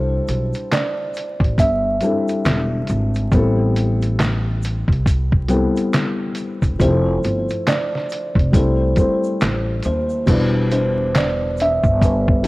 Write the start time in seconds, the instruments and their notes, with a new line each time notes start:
Already playing: upright bass C2, felt piano G3 C4 D4 E4 A4, kalimba C5
0.28 upright bass B1, closed hi-hat, shaker
0.53 closed hi-hat, shaker
0.72 kalimba D5, snare, clap, closed hi-hat, shaker
1.14 closed hi-hat, shaker
1.40 upright bass A1, kick
1.44 closed hi-hat
1.58 upright bass G1, kalimba E5, kick, closed hi-hat, shaker
2.00 felt piano G3 C4 D4 E4, closed hi-hat, shaker
2.05 felt piano A4
2.28 closed hi-hat, shaker
2.45 upright bass E1, snare, clap, closed hi-hat, shaker
2.87 upright bass G#1, closed hi-hat, shaker
3.15 closed hi-hat, shaker
3.32 upright bass A1, felt piano G3 B3 C4 E4, kick, closed hi-hat, shaker
3.36 felt piano A4
3.76 closed hi-hat, shaker
4.02 closed hi-hat, shaker
4.19 snare, clap, closed hi-hat, shaker
4.63 closed hi-hat, shaker
4.88 upright bass C2, kick
4.92 closed hi-hat
5.06 kick, closed hi-hat, shaker
5.32 kick
5.48 felt piano G3 B3 C4 E4, closed hi-hat, shaker
5.52 felt piano A4
5.76 closed hi-hat, shaker
5.93 snare, clap, closed hi-hat, shaker
6.35 closed hi-hat, shaker
6.62 upright bass E1, kick, closed hi-hat, shaker
6.79 upright bass F1, felt piano F3 A3 C4 E4 G4, kalimba C5, kick, closed hi-hat, shaker
6.89 felt piano A4
7.24 upright bass G1, closed hi-hat, shaker
7.49 closed hi-hat, shaker
7.67 kalimba D5, snare, clap, closed hi-hat, shaker
7.95 snare
8.10 closed hi-hat, shaker
8.35 upright bass F1, kick, closed hi-hat
8.52 upright bass C2, felt piano G3 A3 C4 E4, kalimba C5, kick, closed hi-hat, shaker
8.56 felt piano A4
8.96 felt piano G3 A3 C4 E4 C5, kick, closed hi-hat, shaker
9.24 shaker
9.41 upright bass A1, snare, clap, closed hi-hat, shaker
9.83 upright bass D#2, kalimba C5, closed hi-hat, shaker
10.10 shaker
10.26 upright bass E1, felt piano B2 G3 D4 E4 D5, kalimba B4, kick, closed hi-hat, crash, shaker
10.71 kalimba C5, closed hi-hat, shaker
11.15 kalimba D5, snare, clap, closed hi-hat, shaker
11.58 closed hi-hat, shaker
11.62 kalimba E5
11.84 upright bass G1, kick, shaker
12.01 kalimba B4, kick, closed hi-hat, shaker
12.28 kick
12.42 felt piano G3 B3 D4, closed hi-hat